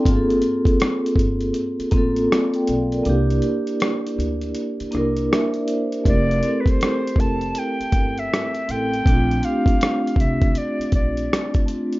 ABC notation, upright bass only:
X:1
M:4/4
L:1/8
Q:"Swing 16ths" 1/4=80
K:F
V:1 name="Upright bass" clef=bass
G,,, z2 G,,, z A,,, z =B,,, | C,, z2 D,, z C,, z2 | F,,, z2 F,,, z G,,, z A,,, | B,,, z2 C,, z B,,, z2 |]